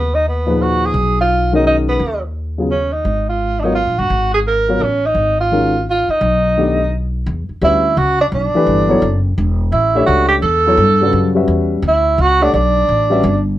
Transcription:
Already playing: D#2 B3
0.15 D#4
0.28 B3
0.46 A#2 F3 D#4 G#4 B4
0.62 F#4
0.86 G#4
0.94 B1
1.21 F4
1.52 D#3 G#3 C#4 D#4 F#4 A#4
1.67 D#4
1.89 B3
2.00 D#2
2.58 C#3 F#3 B3 F4 G#4
2.71 C#4
2.93 D#4
3.05 G#1
3.29 F4
3.60 F#3 B3 D4
3.64 D#4 F4 A#4 C#5
3.75 F4
3.87 A#1
3.98 G1 F#4
4.10 G#1
4.34 G#4
4.47 A#4
4.68 F#3 B3 F4 A#4 C#5
4.80 A1 C#4
5.07 D#4
5.15 G#1
5.41 F4
5.52 D#3 G#3 C#4 F#4 A#4
5.90 F4
6.08 D#4, muted upright bass stroke
6.21 B1
6.57 D#3 A3 B3 D4 G4
7.26 E2
7.49 muted upright bass stroke
7.61 D2 G3 C#4 E4 F#4 B4 D5
7.97 C#2 F#4
8.21 D4
8.32 B1 D4
8.54 E3 A3 D4 G4 B4, muted upright bass stroke
8.67 G1
8.89 F#3 B3 E4 A4 C#5
9.02 F#1
9.38 E1
9.72 A1 E4
9.95 A3 D4 G4 C#5 E5
10.06 C#2 F#4
10.29 G4
10.42 E2 A4
10.67 F#3 B3 E4 A4 C#5
10.78 G2
11.01 C#3 G3 F#4 B4 D5
11.13 F#2
11.35 G3 C#4 F#4 B4 E5
11.48 E2
11.82 D2
11.88 E4
12.18 C#2 F#4
12.41 A3 D4 G4 C#5 F#5
12.53 B1 D4
12.88 A1
13.10 G3 C#4 F#4 B4 E5
13.23 G1

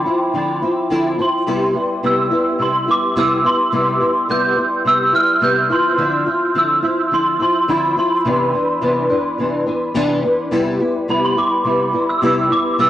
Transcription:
Already playing: G5
0.05 F3 C4 E4
0.33 D3 F3 C4 E4
0.62 F3 C4 E4
0.90 D3 F3 C4 E4
1.18 F3 C4 E4 C6
1.47 C3 G3 B3 E4
1.75 G3 B3 E4
2.03 C3 G3 B3 E4 E6
2.31 G3 B3 E4
2.59 C3 G3 B3 E4 C6
2.87 G3 B3 E4 D6
3.16 C3 G3 B3 E4 E6
3.44 G3 B3 E4 C6
3.72 C3 G3 B3 E4
4.00 G3 B3 E4
4.29 C3 G3 B3 E4 G6
4.56 G3 B3 E4
4.85 C3 G3 B3 E4 E6
5.12 G3 B3 E4 F6
5.41 C3 G3 B3 E4 G6
5.69 F3 C4 E4 C6
5.98 D3 F3 C4 E4
6.26 F3 C4 E4
6.55 D3 F3 C4 E4 E6
6.83 F3 C4 E4
7.11 D3 F3 C4 E4 C6
7.40 F3 C4 E4 C6
7.68 D3 F3 C4 E4 B5
7.97 F3 C4 E4 C6
8.25 C3 E3 B3 D4
8.53 E3 B3 D4
8.81 C3 E3 B3 D4
9.09 E3 B3 D4
9.38 C3 E3 B3 D4
9.66 E3 B3 D4
9.94 C3 E3 B3 D4
10.23 E3 B3 D4
10.51 C3 G3 B3 E4
10.80 G3 B3 E4
11.08 C3 G3 B3 E4 B5
11.25 C6
11.36 G3 B3 E4 D6
11.64 C3 G3 B3 E4
11.93 G3 B3 E4
12.09 E6
12.22 C3 G3 B3 E4
12.50 G3 B3 E4 D6
12.78 C3 G3 B3 E4 E6

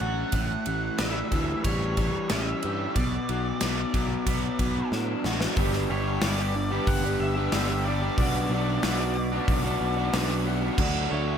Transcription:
Already playing: F#3 A3 C#4
0.00 A1 F#4 F#5, ride
0.32 A1 A2, kick, ride
0.66 A1 E3, ride
0.98 A1 G3 E5, snare, ride
1.32 D2 E3, kick, ride
1.64 A1 G3 C#5, kick, ride
1.97 E3, kick, ride
2.29 A1 C#4 E5, snare, ride
2.63 G2 G4, ride
2.96 B1 B2 D5, kick, ride
3.29 B1 F#3, ride
3.61 B1 B3, snare, ride
3.94 B1 F#3, kick, ride
4.26 B1 B3, kick, ride
4.59 B1 F#3, kick, ride
4.92 A2 D4, snare
5.24 A1 F#4, snare
5.41 snare
5.56 G1 G2 D3 G3 B3 D4 G4, kick, open hi-hat
5.73 snare
5.90 G1 G3 B3 D4 G4 C#5
6.21 G1 G2 D3 G3 B3 D4 D5, snare, open hi-hat
6.25 G4
6.39 G3 B3 D4 G4
6.56 muted overdriven electric guitar stroke
6.71 G3 B3 D4 G4
6.87 G1 F#5, kick, open hi-hat
7.04 G3 B3 D4 G4
7.20 G1 E5
7.37 G3 B3 D4 G4
7.52 G1 G2 D3 G3 B3, snare, open hi-hat
7.56 D4 G4
7.69 G3 B3 D4 G4
7.85 G3 B3 D4 G4 D5
8.02 G3 B3 D4 G4
8.18 B1 B2 F#3 B3 D4 F#4 D5, kick, open hi-hat
8.50 B1 F#3 B3 D4
8.54 F#4
8.82 B1 B2 F#3 B3 D4 F#4, snare, open hi-hat
8.99 B3 D4 F#4
9.17 muted overdriven electric guitar stroke
9.32 B3 D4 F#4
9.48 B1, kick, open hi-hat
9.64 B3 D4 F#4
9.81 B1
9.97 B3 D4 F#4
10.13 B1 B2 F#3 B3 D4 F#4, snare, open hi-hat
10.29 B3 D4 F#4
10.45 F#3 B3 D4 F#4
10.62 B3 D4 F#4
10.78 D2 D3 F#3 A3 D4 F#4, kick, crash
11.11 D2 F#3 A3 D4 F#4 C#5

